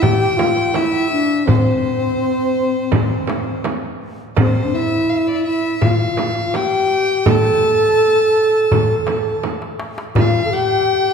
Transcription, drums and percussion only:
0.03 frame drum, darbuka dum
0.39 darbuka tek, frame drum
0.58 darbuka ka
0.74 darbuka tek, frame drum
0.94 darbuka ka
1.31 darbuka ka
1.47 frame drum, darbuka dum
1.85 darbuka ka
2.21 darbuka ka
2.57 darbuka ka
2.92 frame drum, darbuka dum
3.27 darbuka tek, frame drum
3.47 darbuka ka
3.64 darbuka tek, frame drum
3.84 darbuka ka
4.20 darbuka ka
4.36 frame drum, darbuka dum
4.74 darbuka ka
5.10 darbuka ka
5.46 darbuka ka
5.82 frame drum, darbuka dum
6.17 darbuka tek, frame drum
6.37 darbuka ka
6.54 darbuka tek, frame drum
6.73 darbuka ka
7.09 darbuka ka
7.26 frame drum, darbuka dum
7.62 darbuka ka
7.99 darbuka ka
8.35 darbuka ka
8.71 darbuka dum, frame drum
9.07 darbuka tek, frame drum
9.25 darbuka ka
9.43 darbuka tek, frame drum
9.62 darbuka ka
9.80 darbuka tek
9.98 darbuka ka
10.15 darbuka dum, frame drum
10.52 darbuka ka
10.89 darbuka ka

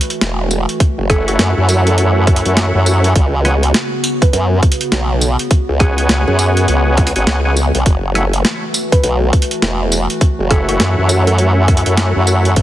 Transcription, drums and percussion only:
0.01 closed hi-hat
0.10 closed hi-hat
0.21 snare, closed hi-hat
0.51 tambourine
0.69 closed hi-hat
0.80 kick, closed hi-hat
1.10 kick, cross-stick, closed hi-hat
1.28 closed hi-hat
1.39 snare, closed hi-hat
1.69 closed hi-hat, tambourine
1.87 closed hi-hat
1.98 closed hi-hat
2.27 kick, cross-stick, closed hi-hat
2.36 closed hi-hat
2.46 closed hi-hat
2.57 snare, closed hi-hat
2.86 tambourine
3.04 closed hi-hat
3.16 kick, closed hi-hat
3.45 cross-stick, closed hi-hat
3.63 closed hi-hat
3.74 snare, closed hi-hat
4.04 tambourine
4.22 kick, closed hi-hat
4.33 closed hi-hat
4.63 kick, closed hi-hat
4.72 closed hi-hat
4.81 closed hi-hat
4.92 snare, closed hi-hat
5.21 tambourine
5.39 closed hi-hat
5.51 kick, closed hi-hat
5.80 kick, cross-stick, closed hi-hat
5.98 closed hi-hat
6.09 snare, closed hi-hat
6.39 closed hi-hat, tambourine
6.57 closed hi-hat
6.68 closed hi-hat
6.97 kick, cross-stick, closed hi-hat
7.07 closed hi-hat
7.16 closed hi-hat
7.27 snare, closed hi-hat
7.56 tambourine
7.75 closed hi-hat
7.86 kick, closed hi-hat
8.15 cross-stick, closed hi-hat
8.33 closed hi-hat
8.45 snare, closed hi-hat
8.74 tambourine
8.92 kick, closed hi-hat
9.04 closed hi-hat
9.33 kick, closed hi-hat
9.42 closed hi-hat
9.51 closed hi-hat
9.62 snare, closed hi-hat
9.92 tambourine
10.10 closed hi-hat
10.21 kick, closed hi-hat
10.51 kick, cross-stick, closed hi-hat
10.69 closed hi-hat
10.80 snare, closed hi-hat
11.09 closed hi-hat, tambourine
11.27 closed hi-hat
11.38 closed hi-hat
11.68 kick, cross-stick, closed hi-hat
11.77 closed hi-hat
11.86 closed hi-hat
11.97 snare, closed hi-hat
12.27 tambourine
12.45 closed hi-hat
12.56 kick, closed hi-hat

